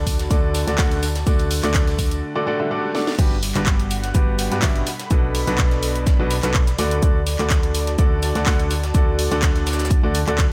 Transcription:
Already playing: fm bass D2, grand piano D3 A3 D4 F#4 A4 D5, analog synth pad F#4 D5 A5 B5
0.07 kick, open hi-hat, tambourine, shaker
0.19 snare, closed hi-hat, tambourine
0.30 fm bass D2, grand piano D3 A3 D4 F#4 A4 D5, kick, closed hi-hat, tambourine, shaker
0.54 snare, open hi-hat, tambourine, shaker
0.67 fm bass D2, grand piano D3 A3 D4 F#4 A4 D5, snare, closed hi-hat, tambourine
0.78 fm bass D2, grand piano D3 A3 D4 F#4 A4 F#5, kick, snare, clap, open hi-hat, tambourine, shaker
0.91 closed hi-hat, tambourine
1.03 snare, open hi-hat, tambourine, shaker
1.16 snare, closed hi-hat, tambourine
1.27 fm bass D2, grand piano D3 A3 D4 F#4 A4 D5, kick, closed hi-hat, tambourine, shaker
1.39 closed hi-hat, tambourine
1.51 open hi-hat, tambourine
1.63 fm bass D2, grand piano D3 A3 D4 F#4 A4 D5, snare, clap, closed hi-hat, tambourine
1.74 kick, snare, clap, closed hi-hat, tambourine, shaker
1.87 snare, closed hi-hat, tambourine
1.99 kick, open hi-hat, tambourine, shaker
2.11 closed hi-hat, tambourine
2.23 swell
2.35 grand piano D3 A3 D4 F#4 A4 D5
2.47 grand piano D3 A3 D4 F#4 A4 D5
2.60 grand piano D3 A3 D4 F#4 A4 E5
2.71 grand piano D3 A3 D4 F#4 A4 D5
2.95 grand piano A3 D4 F#4 A4 D5, snare
3.07 snare
3.19 fm bass G1, grand piano G2 B3 D4 F#4 G4 B4, analog synth pad G3, kick, closed hi-hat, crash, shaker
3.39 analog synth pad F#5, snare, open hi-hat, shaker
3.55 fm bass G1, grand piano G2 B3 D4 F#4 G4 B4, snare, clap, closed hi-hat
3.66 kick, snare, clap, closed hi-hat, shaker
3.79 closed hi-hat
3.91 analog synth pad B5, open hi-hat, shaker
4.04 snare, closed hi-hat
4.15 fm bass G1, grand piano G2 B3 D4 F#4 G4 B4, kick, closed hi-hat, shaker
4.39 snare, open hi-hat, shaker
4.51 fm bass G2, grand piano G2 B3 D4 F#4 G4 B4, snare, closed hi-hat
4.62 fm bass G1, grand piano B2 B3 D4 F#4 G4 E5, kick, snare, clap, open hi-hat, shaker
4.75 closed hi-hat
4.87 analog synth pad A4, snare, open hi-hat, shaker
4.99 snare, closed hi-hat
5.11 fm bass B1, grand piano B2 B3 D4 F#4 A4 B4, kick, closed hi-hat, shaker
5.35 analog synth pad D5, open hi-hat
5.47 fm bass B1, grand piano B2 B3 D4 F#4 A4 B4, snare, closed hi-hat
5.58 kick, snare, clap, closed hi-hat, shaker
5.71 snare, closed hi-hat
5.83 open hi-hat, shaker
5.95 closed hi-hat
6.07 kick, snare, closed hi-hat, shaker
6.19 fm bass B1, grand piano B2 B3 D4 F#4 A4 B4
6.31 snare, open hi-hat, shaker
6.43 fm bass B1, grand piano B2 B3 D4 F#4 A4 B4, snare, clap, closed hi-hat, shaker
6.54 kick, clap, closed hi-hat
6.67 snare, closed hi-hat, shaker
6.79 fm bass D2, grand piano D3 A3 D4 F#4 A4 D5, analog synth pad F#4, snare, open hi-hat, shaker
6.91 closed hi-hat
7.03 fm bass D2, grand piano D3 A3 D4 F#4 A4 D5, kick, closed hi-hat, shaker
7.27 snare, open hi-hat, shaker
7.39 fm bass D2, grand piano D3 A3 D4 F#4 A4 D5, snare, clap, closed hi-hat
7.44 analog synth pad A5
7.50 kick, snare, clap, closed hi-hat, shaker
7.63 closed hi-hat
7.75 open hi-hat, shaker
7.87 snare, closed hi-hat
7.99 fm bass D2, grand piano D3 A3 D4 F#4 A4 D5, kick, closed hi-hat, shaker
8.23 snare, open hi-hat, shaker
8.35 fm bass D2, grand piano D3 A3 D4 F#4 A4 D5, snare, closed hi-hat
8.46 fm bass D2, grand piano D3 A3 D4 F#4 A4 F#5, kick, snare, clap, open hi-hat, shaker
8.59 closed hi-hat
8.71 snare, open hi-hat, shaker
8.83 snare, closed hi-hat
8.95 fm bass D2, grand piano D3 A3 D4 F#4 A4 D5, kick, closed hi-hat, shaker
9.19 open hi-hat
9.31 fm bass D2, grand piano D3 A3 D4 F#4 A4 D5, snare, closed hi-hat
9.42 kick, snare, clap, closed hi-hat, shaker
9.55 snare, closed hi-hat
9.67 snare, open hi-hat, shaker
9.73 snare, shaker
9.79 snare, closed hi-hat, shaker
9.85 snare, shaker
9.91 kick, closed hi-hat, shaker
10.03 fm bass D2, grand piano D3 A3 D4 F#4 A4 D5
10.15 open hi-hat, shaker
10.27 fm bass D2, grand piano D3 A3 D4 F#4 A4 D5, clap, closed hi-hat
10.38 kick, snare, clap, closed hi-hat, shaker

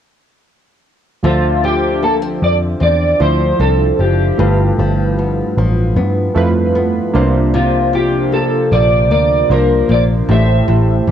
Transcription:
1.23 picked electric bass D2, nylon-string guitar D3, synth keys F3 D4 C5 E5, clean electric guitar F4
1.64 nylon-string guitar F3, clean electric guitar G4
2.03 nylon-string guitar A#3, clean electric guitar A4
2.22 nylon-string guitar C4
2.42 picked electric bass F2, clean electric guitar D5
2.80 picked electric bass E2, nylon-string guitar C4, clean electric guitar D5
3.20 picked electric bass D2, synth keys F3 D4 E4 C5, nylon-string guitar F3, clean electric guitar C5
3.60 picked electric bass C2, nylon-string guitar C4, clean electric guitar A4
3.99 picked electric bass F#1, nylon-string guitar F3, clean electric guitar G4
4.38 picked electric bass G1, nylon-string guitar G2, synth keys A3 E4 F4 B4
4.78 picked electric bass G1, nylon-string guitar F3
5.19 nylon-string guitar B3
5.57 picked electric bass A1, nylon-string guitar F3
5.96 picked electric bass G2, nylon-string guitar B3
6.35 picked electric bass F2, nylon-string guitar F3, synth keys A3 E4 F4 B4
6.75 nylon-string guitar B3
7.13 picked electric bass C2, nylon-string guitar C3, synth keys A#3 D4 F4 C5
7.54 nylon-string guitar C3, clean electric guitar F4
7.93 nylon-string guitar F3, clean electric guitar G4
8.32 nylon-string guitar A#3, clean electric guitar A4
8.72 picked electric bass A#1, nylon-string guitar F3, clean electric guitar D5
9.11 picked electric bass D2, nylon-string guitar A#3, clean electric guitar D5
9.49 picked electric bass C2, nylon-string guitar F3, synth keys A#3 D4 F4 C5, clean electric guitar A#4
9.89 picked electric bass A#1, nylon-string guitar A#3, clean electric guitar D5
10.29 picked electric bass A1, nylon-string guitar A2, synth keys A3 E4 G4 C5, clean electric guitar E5
10.68 picked electric bass A1, nylon-string guitar A2
11.07 picked electric bass A1, nylon-string guitar G3

